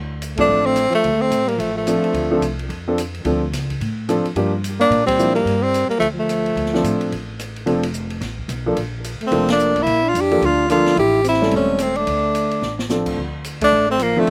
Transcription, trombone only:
0.36 A3
0.64 A3
0.90 F3
1.16 A3
1.45 G3
1.56 F3
1.74 F3
4.80 A#3
5.05 G3
5.32 G3
5.59 G3
5.87 G3
5.98 F3
6.14 F3
9.22 A3
9.49 A#3
9.76 A#3
10.04 D4
10.15 D4
10.42 D4
10.69 D4
10.96 E4
11.24 C4
11.51 A3
11.78 A3
11.96 A3
13.62 A3
13.89 A3
13.99 F3
14.16 F3
14.25 F3

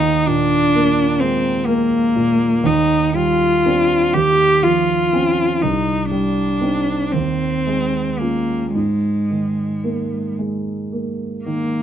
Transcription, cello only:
Already playing: D#4
0.27 D4
1.21 C4
1.66 A#3
2.66 D#4
3.16 F4
4.14 G4
4.63 F4
5.62 D#4
6.11 D4
7.12 C4
8.19 A#3
8.75 G#3
11.45 A#3

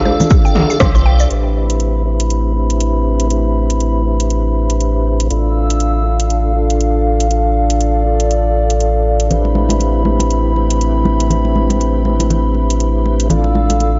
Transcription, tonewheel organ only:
0.05 D4 F4 A4 D5 F5
0.80 D4 F4 A4 F5
0.95 D4 F4 A4 D5 G5
1.30 D4 G4 B4 C5 E5
2.05 D4 G4 B4 C5 E5
2.55 D4 G4 B4 C5 E5
3.30 D4 G4 B4 C5 E5
4.05 D4 G4 B4 C5 E5
5.30 D4 F4 A4 D5 F5
6.06 D4 F4 A4 D5 F5
6.56 D4 F4 A4 D5 F5
7.31 D4 F4 A4 D5 F5
8.06 D4 F4 A4 D5 F5
9.31 D4 G4 B4 C5 E5
10.06 D4 G4 B4 C5 E5
10.56 D4 G4 B4 C5 E5
11.31 D4 G4 B4 C5 E5
12.06 D4 G4 B4 C5 E5
13.30 D4 F4 A4 D5 F5

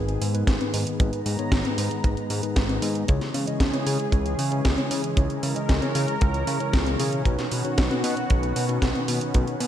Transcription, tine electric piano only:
Already playing: G#2 B3 D#4 G#4 B4
0.34 G#2 B3 D#4 G#4 B4
0.61 G#2 B3 D#4 G#4 B4
1.00 G#2 B3 D#4 G#4 B4
1.39 G#2 B3 D#4 G#4 C#5
1.65 G#2 B3 D#4 G#4 B4
2.04 G#2 B3 D#4 G#4 B4
2.43 G#2 B3 D#4 G#4 B4
2.69 G#2 B3 D#4 G#4 B4
3.08 C#3 C#4 E4 G#4 C#5
3.47 C#3 C#4 E4 G#4 D#5
3.73 C#3 C#4 E4 G#4 C#5
4.13 C#3 C#4 E4 G#4 C#5
4.52 C#3 C#4 E4 G#4 C#5
4.78 C#3 C#4 E4 G#4 C#5
5.17 C#3 C#4 E4 G#4 C#5
5.56 C#3 C#4 E4 G#4 D#5
5.82 C#3 C#4 E4 G#4 C#5
6.21 C#3 C#4 E4 G#4 C#5
6.60 C#3 C#4 E4 G#4 C#5
6.86 C#3 C#4 E4 G#4 C#5
7.00 B2 C#4 E4 G#4 C#5
7.26 B2 C#4 D#4 F#4 B4
7.65 B2 C#4 D#4 F#4 C#5
7.91 B2 C#4 D#4 F#4 B4
8.30 B2 C#4 D#4 F#4 B4
8.69 B2 C#4 D#4 F#4 B4
8.95 B2 C#4 D#4 F#4 B4
9.34 B2 C#4 D#4 F#4 B4

